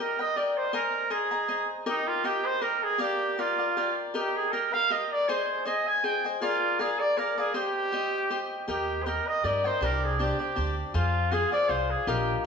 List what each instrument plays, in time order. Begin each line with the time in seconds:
0.00 cavaquinho G4 A#4 D#5 G5, trumpet A#4
0.19 cavaquinho A#4 D#5 G5, trumpet D#5
0.36 cavaquinho G4 A#4 D#5 G5, trumpet D5
0.57 trumpet C5
0.73 trumpet A#4, cavaquinho C5 D#5 G#5 A#5
1.10 trumpet G#4, cavaquinho C5 D#5 G#5 A#5
1.31 cavaquinho D#5 G#5 A#5
1.48 cavaquinho C5 D#5 G#5 A#5
1.86 trumpet D#4, cavaquinho G4 A#4 D#5 G5
2.08 trumpet F4
2.24 cavaquinho G4 A#4 D#5 G5, trumpet G4
2.46 trumpet C5
2.61 cavaquinho G4 A#4 D#5 G5, trumpet A#4
2.83 trumpet G#4
2.98 cavaquinho G4 A#4 D5 F5, trumpet G4
3.38 trumpet F4, cavaquinho G4 A#4 D5 F5
3.58 cavaquinho A#4 D5 F5
3.77 cavaquinho G4 A#4 D5 F5
4.14 cavaquinho G4 A#4 D#5 G5, trumpet G4
4.36 trumpet G#4
4.52 cavaquinho G4 A#4 D#5 G5, trumpet A#4
4.73 cavaquinho A#4 D#5 G5, trumpet F5
4.90 cavaquinho G4 A#4 D#5 G5, trumpet D#5
5.12 trumpet D5
5.28 cavaquinho G#4 C5 D#5 G#5, trumpet C5
5.65 cavaquinho G#4 C5 D#5 G#5, trumpet D#5
5.87 trumpet G#5
6.04 cavaquinho G#4 C5 D#5 G#5, trumpet G5
6.24 cavaquinho C5 D#5 G#5
6.41 trumpet F4, cavaquinho G#4 A#4 D5 F5
6.79 cavaquinho G#4 A#4 D5 F5, trumpet G#4
7.00 trumpet D5
7.17 cavaquinho G#4 A#4 D5 F5, trumpet A#4
7.38 trumpet G#4, cavaquinho A#4 D5 F5
7.54 cavaquinho G4 C5 D#5 G5, trumpet G4
7.92 cavaquinho G4 C5 D#5 G5
8.30 cavaquinho G4 C5 D#5 G5
8.68 upright bass D#2, cavaquinho G4 A#4 D#5 G5, trumpet G4
9.03 cavaquinho G4, trumpet C5
9.07 cavaquinho A#4 D#5 G5, trumpet A#4
9.28 trumpet D#5
9.44 upright bass G2, cavaquinho G4 A#4 D#5 G5, trumpet D5
9.64 cavaquinho A#4 D#5 G5, trumpet C5
9.81 upright bass C2, cavaquinho D4 G4 C5 D5, trumpet A#4
10.04 trumpet G#4
10.19 cavaquinho D4 G4 C5 D5, trumpet G4
10.39 cavaquinho G4 C5 D5
10.56 upright bass D2, cavaquinho D4 G4 C5 D5
10.94 upright bass F2, cavaquinho F4 G#4 C5 F5, trumpet F4
11.32 cavaquinho F4 G#4 C5 F5, trumpet G#4
11.52 cavaquinho G#4 C5 F5, trumpet D5
11.69 upright bass C2, cavaquinho F4 G#4 C5 F5, trumpet C5
11.91 trumpet G#4
12.07 upright bass A#1, cavaquinho F4 A#4 D#5 F5, trumpet G4
12.38 trumpet G4